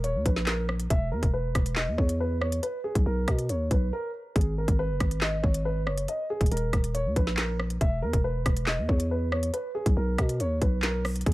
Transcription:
Already playing: 808-style bass D#1
0.04 grand piano C#5, closed hi-hat
0.15 808-style bass D#2
0.26 808-style bass A#1, grand piano B4, kick, closed hi-hat
0.36 snare
0.47 grand piano A#4, snare, clap, closed hi-hat
0.69 cross-stick
0.80 closed hi-hat
0.90 808-style bass E1, grand piano E5, kick, closed hi-hat
1.12 808-style bass E2, grand piano A#4
1.23 808-style bass E1, kick, closed hi-hat
1.33 grand piano B4
1.55 808-style bass E1, kick, cross-stick, closed hi-hat
1.66 closed hi-hat
1.76 grand piano D#5, snare, clap
1.87 808-style bass E2
1.98 808-style bass E2, grand piano C#5, kick
2.09 closed hi-hat
2.20 grand piano B4
2.41 grand piano C#5, cross-stick
2.52 closed hi-hat
2.63 grand piano B4, closed hi-hat
2.84 grand piano G#4
2.95 808-style bass B1, kick, closed hi-hat
3.06 808-style bass B1, grand piano A#4
3.28 808-style bass B2, kick, cross-stick, closed hi-hat
3.39 closed hi-hat
3.49 808-style bass D#2, grand piano C#5, closed hi-hat
3.71 808-style bass B1, grand piano B4, kick, closed hi-hat
3.93 grand piano A#4
4.36 808-style bass G#1, grand piano G#4, kick, closed hi-hat
4.41 closed hi-hat
4.58 grand piano A#4
4.68 808-style bass G#1, kick, closed hi-hat
4.79 grand piano B4
4.90 808-style bass F#1
5.00 808-style bass G#1, kick, cross-stick, closed hi-hat
5.11 closed hi-hat
5.21 grand piano D#5, snare, clap
5.43 808-style bass G#1, grand piano C#5, kick
5.54 closed hi-hat
5.65 grand piano B4
5.86 808-style bass F#1, grand piano C#5, cross-stick
5.98 closed hi-hat
6.08 grand piano D#5, closed hi-hat
6.30 grand piano G#4
6.41 808-style bass D#1, kick, closed hi-hat
6.46 closed hi-hat
6.52 808-style bass D#1, grand piano A#4, closed hi-hat
6.57 closed hi-hat
6.73 808-style bass D#1, kick, cross-stick, closed hi-hat
6.84 closed hi-hat
6.94 grand piano C#5, closed hi-hat
7.05 808-style bass D#2
7.16 808-style bass A#1, grand piano B4, kick, closed hi-hat
7.27 snare
7.37 grand piano A#4, snare, clap, closed hi-hat
7.59 cross-stick
7.70 closed hi-hat
7.81 808-style bass E1, grand piano E5, kick, closed hi-hat
8.02 808-style bass E2, grand piano A#4
8.13 808-style bass E1, kick, closed hi-hat
8.24 grand piano B4
8.46 808-style bass E1, kick, cross-stick, closed hi-hat
8.57 closed hi-hat
8.67 grand piano D#5, snare, clap
8.78 808-style bass E2
8.88 808-style bass E2, grand piano C#5, kick
9.00 closed hi-hat
9.11 grand piano B4
9.32 grand piano C#5, cross-stick
9.43 closed hi-hat
9.53 grand piano B4, closed hi-hat
9.75 grand piano G#4
9.86 808-style bass B1, kick, closed hi-hat
9.97 808-style bass B1, grand piano A#4
10.18 808-style bass B2, kick, cross-stick, closed hi-hat
10.29 closed hi-hat
10.40 808-style bass D#2, grand piano C#5, closed hi-hat
10.62 808-style bass B1, grand piano B4, kick, closed hi-hat
10.83 grand piano A#4, snare, clap, closed hi-hat
11.05 cross-stick, open hi-hat
11.16 closed hi-hat
11.21 closed hi-hat
11.26 808-style bass G#1, grand piano G#4, kick, closed hi-hat

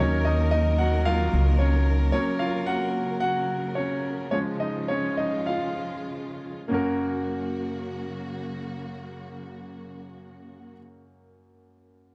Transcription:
Already playing: string section F#3 A#3 A#4
0.00 upright bass D#2, string section D#3, grand piano F#3 A#3 C#4 D#4 C#5
0.25 grand piano D#4 D#5
0.51 grand piano D#4 D#5
0.78 grand piano F#4 F#5
1.05 grand piano F#3 A#3 D#4 F4 F5
1.33 upright bass C#2
1.59 grand piano C#4 C#5
2.12 string section C#3, grand piano F#3 A#3 C#4 C#5
2.39 grand piano F4 F5
2.66 grand piano F#4 F#5
3.20 grand piano F#4 F#5
3.75 grand piano C#4 C#5
4.31 grand piano F3 G#3 C#4 C#5, string section F3 G#3 F4
4.60 grand piano D#4 D#5
4.88 grand piano C#4 C#5
5.17 grand piano D#4 D#5
5.46 grand piano F4 F5
6.68 grand piano F#2 A#3 C#4 F#4, string section C#3 F#3 A#3 F#4
6.74 grand piano A#4

